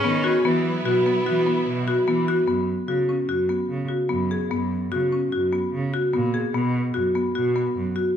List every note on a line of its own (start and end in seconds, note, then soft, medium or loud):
0.00 0.43 C#3 medium
0.00 0.20 B3 medium
0.00 0.43 C#4 medium
0.00 0.48 C#4 loud
0.00 2.44 B4 medium
0.05 0.39 D#3 medium
0.24 0.40 F#4 medium
0.45 0.80 E3 medium
0.45 2.47 F#3 medium
0.45 0.76 B3 medium
0.45 2.28 B3 medium
0.45 2.47 E4 medium
0.85 1.03 B2 medium
0.85 1.01 F#4 medium
1.06 1.21 B3 medium
1.26 1.61 E3 medium
1.26 1.42 F#4 medium
1.47 1.77 B3 medium
1.67 2.02 B2 medium
1.88 2.03 F#4 medium
2.07 2.42 E3 medium
2.07 2.23 B3 medium
2.28 2.43 F#4 medium
2.47 2.82 F#2 medium
2.47 2.78 B3 medium
2.88 3.23 C#3 medium
2.88 3.04 F#4 medium
3.09 3.24 C#4 medium
3.28 3.63 F#2 medium
3.28 3.44 F#4 medium
3.49 3.80 B3 medium
3.69 3.87 C#3 medium
3.89 4.05 F#4 medium
4.09 4.45 F#2 medium
4.09 4.25 B3 medium
4.31 4.46 G#4 medium
4.51 4.86 F#2 medium
4.51 4.82 B3 medium
4.92 5.27 C#3 medium
4.92 5.07 F#4 medium
5.12 5.28 C#4 medium
5.32 5.67 F#2 medium
5.32 5.48 F#4 medium
5.53 5.83 B3 medium
5.73 5.90 C#3 medium
5.94 6.09 F#4 medium
6.13 6.48 A#2 medium
6.13 6.29 B3 medium
6.34 6.49 G#4 medium
6.54 6.89 B2 medium
6.54 6.85 B3 medium
6.94 7.30 F#2 medium
6.94 7.10 F#4 medium
7.15 7.31 B3 medium
7.35 7.70 B2 medium
7.35 7.51 F#4 medium
7.56 7.86 B3 medium
7.76 7.93 F#2 medium
7.96 8.11 F#4 medium